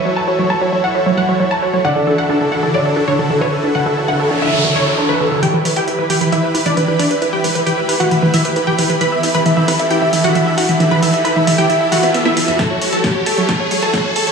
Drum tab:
HH |----------------|----------------|----------------|x-oxx-oxx-oxx-ox|
SD |----------------|----------------|----------------|----------------|
BD |----------------|----------------|----------------|----------------|

HH |x-oxx-oxx-oxx-ox|x-oxx-oxx-oxx-ox|x-oxx-oxx-oxx-ox|x-oxx-oxx-oxx-ox|
SD |----------------|----------------|----------------|o---o---o---o---|
BD |----------------|----------------|----------------|o---o---o---o---|